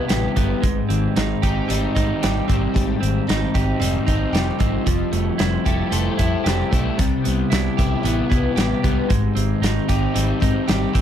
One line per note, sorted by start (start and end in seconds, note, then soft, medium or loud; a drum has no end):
0.00 0.36 C3 medium
0.00 0.35 B3 medium
0.00 0.62 B3 medium
0.00 0.61 E4 medium
0.00 0.63 E4 medium
0.08 0.26 A1 medium
0.08 0.36 G3 medium
0.08 0.66 G3 medium
0.08 0.65 G4 medium
0.08 snare loud
0.08 closed hi-hat medium
0.36 0.53 G1 medium
0.36 1.13 G3 medium
0.36 0.62 B3 medium
0.36 kick medium
0.36 closed hi-hat medium
0.62 0.79 G#1 medium
0.62 1.95 G#2 medium
0.62 1.95 G#3 medium
0.62 kick loud
0.62 closed hi-hat medium
0.89 1.06 G#1 medium
0.89 1.14 D#3 medium
0.89 1.68 C4 medium
0.89 closed hi-hat medium
1.16 1.32 G#1 loud
1.16 2.48 D#3 medium
1.16 1.94 D#4 medium
1.16 snare loud
1.16 closed hi-hat medium
1.42 1.59 G#1 medium
1.42 1.96 C4 medium
1.42 2.75 D#4 medium
1.42 2.22 G4 medium
1.42 kick medium
1.42 closed hi-hat medium
1.68 1.85 G#1 medium
1.68 2.22 G3 medium
1.68 2.47 C4 medium
1.68 3.02 D#4 medium
1.68 closed hi-hat medium
1.95 2.12 G#2 medium
1.95 4.06 C4 medium
1.95 2.49 C4 medium
1.95 3.27 D#4 medium
1.95 kick medium
1.95 closed hi-hat medium
2.22 2.39 G#1 medium
2.22 4.34 G3 medium
2.22 2.47 G3 medium
2.22 3.54 G4 medium
2.22 snare loud
2.22 closed hi-hat medium
2.48 2.65 G#1 medium
2.48 2.74 G3 medium
2.48 3.00 C4 medium
2.48 3.55 C4 medium
2.48 kick medium
2.48 closed hi-hat medium
2.74 2.92 G#1 medium
2.74 4.07 G#2 medium
2.74 3.27 G3 medium
2.74 kick loud
2.74 closed hi-hat medium
3.00 3.18 G#1 medium
3.00 3.27 D#3 medium
3.00 3.80 C4 medium
3.00 closed hi-hat medium
3.27 3.45 G#1 medium
3.27 4.60 D#3 medium
3.27 3.79 G3 medium
3.27 4.05 D#4 medium
3.27 snare loud
3.27 closed hi-hat medium
3.54 3.71 G#1 medium
3.54 4.07 C4 medium
3.54 4.86 D#4 medium
3.54 4.33 G4 medium
3.54 kick medium
3.54 closed hi-hat medium
3.80 3.96 F1 medium
3.80 4.32 G3 medium
3.80 4.59 C4 medium
3.80 4.87 D#4 medium
3.80 closed hi-hat medium
4.06 4.24 G#1 medium
4.06 5.39 C4 medium
4.06 4.60 C4 medium
4.06 4.86 D#4 medium
4.06 kick medium
4.06 closed hi-hat medium
4.33 4.49 F1 medium
4.33 4.58 G3 medium
4.33 4.89 G3 medium
4.33 4.89 G4 medium
4.33 snare loud
4.33 closed hi-hat medium
4.59 4.76 G#1 medium
4.59 4.86 G3 medium
4.59 5.12 C4 medium
4.59 6.45 C4 medium
4.59 kick medium
4.59 closed hi-hat medium
4.86 5.03 F1 medium
4.86 6.18 F3 medium
4.86 6.19 F3 medium
4.86 6.46 G3 medium
4.86 kick loud
4.86 closed hi-hat medium
5.12 5.29 F1 medium
5.12 5.38 G3 medium
5.12 5.89 A3 medium
5.12 closed hi-hat medium
5.38 5.56 F1 medium
5.38 7.26 G3 medium
5.38 5.91 C4 medium
5.38 6.16 E4 medium
5.38 snare loud
5.38 closed hi-hat medium
5.65 5.82 F1 medium
5.65 6.18 E4 medium
5.65 6.44 G4 medium
5.65 6.98 A4 medium
5.65 kick medium
5.65 closed hi-hat medium
5.91 6.08 F1 medium
5.91 6.70 A3 medium
5.91 6.71 C4 medium
5.91 6.98 A4 medium
5.91 closed hi-hat medium
6.17 6.35 F2 medium
6.17 6.97 E4 medium
6.17 6.73 E4 medium
6.17 6.99 E4 medium
6.17 kick medium
6.17 closed hi-hat medium
6.44 6.62 F1 medium
6.44 6.98 G3 medium
6.44 7.78 C4 medium
6.44 7.77 G4 medium
6.44 snare loud
6.44 closed hi-hat medium
6.71 6.88 B1 medium
6.71 6.98 A3 medium
6.71 8.29 C4 medium
6.71 6.99 E4 medium
6.71 kick medium
6.71 closed hi-hat medium
6.97 7.15 C2 medium
6.97 8.30 C3 medium
6.97 7.51 C3 medium
6.97 7.51 G3 medium
6.97 kick loud
6.97 closed hi-hat medium
7.24 7.42 C2 medium
7.24 8.58 G3 medium
7.24 8.03 B3 medium
7.24 closed hi-hat medium
7.50 7.68 C2 medium
7.50 8.84 C3 medium
7.50 8.03 G3 medium
7.50 8.28 E4 medium
7.50 snare loud
7.50 closed hi-hat medium
7.77 7.95 C2 medium
7.77 8.30 B3 medium
7.77 9.10 E4 medium
7.77 8.56 G4 medium
7.77 kick medium
7.77 closed hi-hat medium
8.03 8.20 A1 medium
8.03 8.55 G3 medium
8.03 8.82 B3 medium
8.03 9.10 E4 medium
8.03 closed hi-hat medium
8.29 8.47 C2 medium
8.29 9.09 B3 medium
8.29 8.83 B3 medium
8.29 9.09 E4 medium
8.29 kick medium
8.29 closed hi-hat medium
8.56 8.73 A1 medium
8.56 8.83 G3 medium
8.56 9.14 G3 medium
8.56 9.12 G4 medium
8.56 snare loud
8.56 closed hi-hat medium
8.83 9.00 C2 medium
8.83 9.60 G3 medium
8.83 9.10 B3 medium
8.83 kick medium
8.83 closed hi-hat medium
9.09 9.26 G#1 medium
9.09 10.43 G#2 medium
9.09 10.42 G#3 medium
9.09 kick loud
9.09 closed hi-hat medium
9.35 9.52 G#1 medium
9.35 9.61 D#3 medium
9.35 10.15 C4 medium
9.35 closed hi-hat medium
9.62 9.78 G#1 medium
9.62 10.95 D#3 medium
9.62 10.41 D#4 medium
9.62 snare loud
9.62 closed hi-hat medium
9.88 10.06 G#1 medium
9.88 10.40 C4 medium
9.88 11.01 D#4 medium
9.88 10.67 G4 medium
9.88 kick medium
9.88 closed hi-hat medium
10.14 10.32 G#1 medium
10.14 10.66 G3 medium
10.14 10.93 C4 medium
10.14 11.01 D#4 medium
10.14 closed hi-hat medium
10.40 10.58 G#2 medium
10.40 11.01 C4 medium
10.40 10.91 C4 medium
10.40 11.01 D#4 medium
10.40 kick medium
10.40 closed hi-hat medium
10.67 10.85 G#1 medium
10.67 11.01 G3 medium
10.67 10.92 G3 medium
10.67 11.01 G4 medium
10.67 snare loud
10.67 closed hi-hat medium
10.93 11.01 G#1 medium
10.93 11.01 G3 medium
10.93 11.01 C4 medium
10.93 kick medium
10.93 closed hi-hat medium